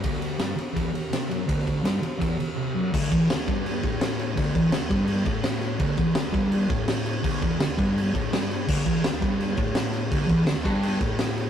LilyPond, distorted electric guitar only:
\new Staff \with { instrumentName = "Distorted electric guitar" } { \clef bass \time 4/4 \key d \mixolydian \tempo 4 = 167 d,4 g,8 r8 e,8 r8 c8 fis,8 | d,4 g,8 r8 e,8 r8 c8 fis,8 | d,8 e,8 d,8 g,4 a,4. | d,8 e,8 d,8 g,4 a,4. |
d,8 e,8 d,8 g,4 a,4. | d,8 e,8 d,8 g,4 a,8 g,4 | d,8 e,8 d,8 g,4 a,4. | d,8 e,8 d,8 g,4 a,4. | }